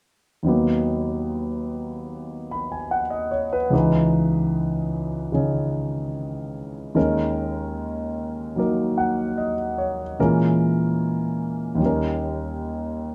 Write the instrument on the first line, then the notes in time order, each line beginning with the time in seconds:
grand piano
0.43 D#2 D#3 F#3
0.47 A#3 B3
2.51 B5
2.72 G#5
2.91 F#5
3.10 D#5
3.31 C#5
3.53 B4
3.70 C#2 C#3 E3 D#4
3.75 B4
5.32 C#3 D#3 C#4 G#4
6.95 D#2 D#3 G#3 C#4 A#4
8.56 F#3 A#3 D#4 A#4
8.98 F#5
9.38 D#5
9.78 C#5
10.19 A#2 E3 G#3 C#4 A#4
11.75 D#2 D#3
11.80 G3 C#4
11.86 A#4